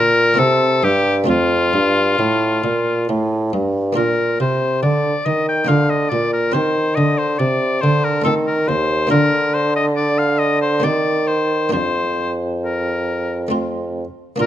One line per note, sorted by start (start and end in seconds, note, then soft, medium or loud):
0.00 0.34 A#2 medium
0.00 0.38 A#2 medium
0.00 0.32 D4 medium
0.00 0.33 F4 medium
0.00 0.41 A#4 loud
0.34 1.24 A#3 medium
0.34 1.24 C4 medium
0.34 1.25 E4 medium
0.38 0.79 C3 medium
0.38 0.83 C3 medium
0.38 0.86 A4 medium
0.83 1.24 G2 medium
0.83 1.31 G2 medium
0.83 1.17 G4 medium
1.24 1.70 A3 medium
1.24 1.71 C4 medium
1.24 3.92 F4 medium
1.29 1.70 F2 medium
1.29 1.74 F2 medium
1.29 3.05 F4 medium
1.74 2.14 G2 medium
1.74 2.18 G2 medium
2.19 2.59 A2 soft
2.19 2.63 A2 medium
2.64 3.04 A#2 medium
2.64 3.08 A#2 medium
3.09 3.52 A2 medium
3.09 3.49 A2 medium
3.53 3.93 G2 medium
3.53 3.97 G2 medium
3.93 5.63 A#3 soft
3.93 5.64 D4 soft
3.93 5.65 F4 soft
3.97 4.36 A#2 soft
3.97 4.38 A#2 medium
3.97 4.37 A#4 medium
4.40 4.79 C3 soft
4.40 4.86 C3 soft
4.40 4.82 C5 medium
4.83 5.22 D3 soft
4.83 5.14 D3 medium
4.83 5.27 D5 medium
5.26 5.65 D#3 soft
5.26 5.69 D#3 soft
5.26 5.48 D#5 medium
5.49 5.69 G5 medium
5.65 6.49 A#3 soft
5.65 6.50 D4 soft
5.65 6.51 F4 soft
5.65 5.92 F5 medium
5.69 6.08 D3 soft
5.69 6.11 D3 medium
5.90 6.11 D#5 medium
6.10 6.50 A#2 soft
6.10 6.54 A#2 medium
6.10 6.32 D5 medium
6.33 6.55 A#4 medium
6.52 6.98 D#3 medium
6.52 6.93 D#3 soft
6.52 8.20 C4 soft
6.52 8.21 G4 soft
6.52 6.96 C5 medium
6.95 7.40 D3 medium
6.95 7.36 D3 soft
6.95 7.20 D#5 medium
7.18 7.40 C5 medium
7.38 7.78 C3 soft
7.38 7.82 C3 medium
7.38 7.82 D5 medium
7.81 8.27 D3 medium
7.81 8.22 D3 medium
7.81 8.06 C5 medium
8.04 8.24 A#4 medium
8.22 8.70 D#3 medium
8.22 9.06 A3 soft
8.22 9.08 C4 soft
8.22 9.08 F4 soft
8.22 8.34 A4 medium
8.27 8.65 D#3 soft
8.47 8.70 A#4 medium
8.68 9.11 D#2 medium
8.68 9.07 D#2 soft
8.68 9.10 C5 medium
9.07 10.78 A#3 soft
9.07 10.79 D4 soft
9.07 10.79 F4 soft
9.07 9.56 A#4 medium
9.11 10.86 D3 medium
9.11 10.80 D3 medium
9.54 9.76 C5 medium
9.76 9.86 D#5 medium
9.96 10.20 D5 medium
10.19 10.41 F5 medium
10.39 10.61 D#5 medium
10.62 10.85 C5 medium
10.80 11.68 A#3 soft
10.80 11.69 C4 soft
10.80 11.70 G4 soft
10.80 11.29 D5 medium
10.84 11.70 D#3 soft
10.84 11.74 D#3 medium
11.27 11.72 C5 medium
11.69 13.46 A#3 soft
11.69 13.46 D4 soft
11.69 13.47 F4 soft
11.69 12.33 C5 medium
11.74 14.04 F2 soft
11.74 14.05 F2 medium
12.63 13.48 A#4 soft
13.48 14.36 A3 soft
13.48 14.37 C4 soft
13.48 14.37 F4 soft
14.36 14.46 A#3 soft
14.36 14.46 D4 soft
14.36 14.46 F4 soft
14.40 14.46 A#2 soft
14.40 14.46 A#2 medium
14.40 14.46 A#4 medium